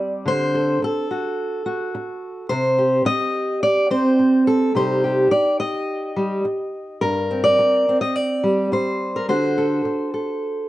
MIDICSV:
0, 0, Header, 1, 3, 480
1, 0, Start_track
1, 0, Tempo, 558659
1, 221, Time_signature, 4, 2, 24, 8
1, 3580, Tempo, 566572
1, 9105, End_track
2, 0, Start_track
2, 0, Title_t, "Steel-string acoustic guitar"
2, 0, Program_c, 0, 25
2, 0, Note_on_c, 0, 55, 54
2, 0, Note_on_c, 0, 60, 42
2, 0, Note_on_c, 0, 74, 93
2, 219, Note_on_c, 0, 50, 47
2, 223, Note_off_c, 0, 55, 0
2, 226, Note_off_c, 0, 74, 0
2, 238, Note_on_c, 0, 72, 98
2, 469, Note_on_c, 0, 69, 42
2, 696, Note_off_c, 0, 50, 0
2, 710, Note_off_c, 0, 72, 0
2, 712, Note_off_c, 0, 69, 0
2, 723, Note_on_c, 0, 69, 68
2, 948, Note_off_c, 0, 60, 0
2, 952, Note_on_c, 0, 66, 42
2, 1414, Note_off_c, 0, 66, 0
2, 1425, Note_on_c, 0, 66, 59
2, 2113, Note_off_c, 0, 66, 0
2, 2138, Note_off_c, 0, 69, 0
2, 2142, Note_on_c, 0, 72, 95
2, 2153, Note_on_c, 0, 48, 50
2, 2392, Note_on_c, 0, 67, 42
2, 2617, Note_off_c, 0, 48, 0
2, 2620, Note_off_c, 0, 72, 0
2, 2630, Note_on_c, 0, 75, 109
2, 3104, Note_off_c, 0, 75, 0
2, 3117, Note_on_c, 0, 74, 97
2, 3348, Note_off_c, 0, 74, 0
2, 3355, Note_on_c, 0, 60, 59
2, 3360, Note_on_c, 0, 72, 81
2, 3830, Note_off_c, 0, 72, 0
2, 3839, Note_on_c, 0, 69, 65
2, 4040, Note_off_c, 0, 60, 0
2, 4069, Note_off_c, 0, 69, 0
2, 4071, Note_on_c, 0, 48, 54
2, 4077, Note_on_c, 0, 55, 36
2, 4081, Note_on_c, 0, 63, 36
2, 4086, Note_off_c, 0, 67, 0
2, 4086, Note_on_c, 0, 72, 82
2, 4089, Note_on_c, 0, 67, 41
2, 4316, Note_off_c, 0, 67, 0
2, 4319, Note_on_c, 0, 67, 44
2, 4540, Note_off_c, 0, 48, 0
2, 4545, Note_off_c, 0, 55, 0
2, 4548, Note_off_c, 0, 72, 0
2, 4551, Note_on_c, 0, 74, 83
2, 4784, Note_off_c, 0, 74, 0
2, 4792, Note_on_c, 0, 75, 82
2, 5272, Note_on_c, 0, 55, 55
2, 5504, Note_off_c, 0, 55, 0
2, 5968, Note_off_c, 0, 67, 0
2, 5969, Note_off_c, 0, 63, 0
2, 5991, Note_on_c, 0, 70, 92
2, 5994, Note_off_c, 0, 75, 0
2, 5994, Note_on_c, 0, 43, 48
2, 6241, Note_on_c, 0, 60, 41
2, 6351, Note_on_c, 0, 74, 93
2, 6467, Note_off_c, 0, 43, 0
2, 6718, Note_off_c, 0, 60, 0
2, 6733, Note_on_c, 0, 60, 42
2, 6833, Note_off_c, 0, 70, 0
2, 6833, Note_off_c, 0, 74, 0
2, 6836, Note_on_c, 0, 75, 87
2, 6959, Note_off_c, 0, 75, 0
2, 6959, Note_on_c, 0, 74, 87
2, 7196, Note_on_c, 0, 55, 57
2, 7436, Note_off_c, 0, 74, 0
2, 7446, Note_on_c, 0, 72, 84
2, 7810, Note_on_c, 0, 70, 73
2, 7909, Note_off_c, 0, 72, 0
2, 7911, Note_off_c, 0, 55, 0
2, 7916, Note_on_c, 0, 50, 51
2, 7919, Note_off_c, 0, 70, 0
2, 7920, Note_off_c, 0, 60, 0
2, 7920, Note_on_c, 0, 72, 77
2, 7923, Note_on_c, 0, 66, 33
2, 7928, Note_on_c, 0, 69, 35
2, 8161, Note_off_c, 0, 69, 0
2, 8164, Note_on_c, 0, 69, 43
2, 8386, Note_off_c, 0, 50, 0
2, 8636, Note_off_c, 0, 69, 0
2, 8639, Note_on_c, 0, 69, 44
2, 9097, Note_off_c, 0, 66, 0
2, 9105, Note_off_c, 0, 69, 0
2, 9105, Note_off_c, 0, 72, 0
2, 9105, End_track
3, 0, Start_track
3, 0, Title_t, "Muted steel-string acoustic guitar strokes"
3, 707, Note_on_c, 9, 29, 53
3, 793, Note_off_c, 9, 29, 0
3, 1673, Note_on_c, 9, 29, 61
3, 1759, Note_off_c, 9, 29, 0
3, 2621, Note_on_c, 9, 29, 64
3, 2707, Note_off_c, 9, 29, 0
3, 3601, Note_on_c, 9, 29, 53
3, 3686, Note_off_c, 9, 29, 0
3, 4549, Note_on_c, 9, 29, 60
3, 4634, Note_off_c, 9, 29, 0
3, 5511, Note_on_c, 9, 29, 56
3, 5596, Note_off_c, 9, 29, 0
3, 6478, Note_on_c, 9, 29, 55
3, 6562, Note_off_c, 9, 29, 0
3, 7436, Note_on_c, 9, 29, 58
3, 7520, Note_off_c, 9, 29, 0
3, 8396, Note_on_c, 9, 29, 57
3, 8481, Note_off_c, 9, 29, 0
3, 9105, End_track
0, 0, End_of_file